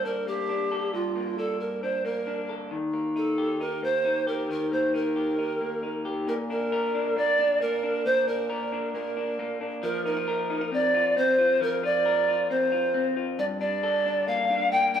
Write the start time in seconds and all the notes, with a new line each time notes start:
Already playing: G2 A#3 A4
0.05 D4 A#4
0.27 A#3 G4
0.49 D4
0.72 A4
0.94 G2 F4
1.16 A#3
1.38 D4 A4
1.60 A#4
1.82 D4 C5
2.05 A#3 A#4
2.27 D4
2.49 A4
2.71 D#3
2.93 A#3
3.16 D#4 A4
3.38 G4
3.61 D#4 A#4
3.83 A#3 C5
4.05 D#4
4.27 G4 A#4
4.50 D#3 A#4
4.72 A#3 C5
4.94 D#4 A#4
5.16 G4
5.38 D#4
5.61 A#3
5.83 D#4
6.05 G4
6.27 A#2 A#4
6.50 D4 A#4
6.72 A#4
6.94 D4
7.16 A#3 D5
7.39 D4
7.61 A#3 A#4
7.83 D4
8.05 A#2 C5
8.27 D4 A#4
8.50 A#4
8.72 D4
8.94 A#3 A#4
9.17 D4
9.39 A#3
9.61 D4
9.83 F3 A#4
10.05 D#4 A#4
10.17 F4
10.28 A#4
10.50 D#4
10.61 F4
10.72 C4 D5
10.94 F4
11.17 C4 C5
11.38 F4
11.61 F3 A#4
11.83 F4 D5
12.06 A#4
12.28 F4
12.50 C4 C5
12.72 F4
12.94 C4
13.16 F4
13.39 G2 D5
13.61 D4 D5
13.83 A4
14.05 D4
14.27 A#3 F5
14.50 D4
14.71 A#3 G5
14.94 D4 G5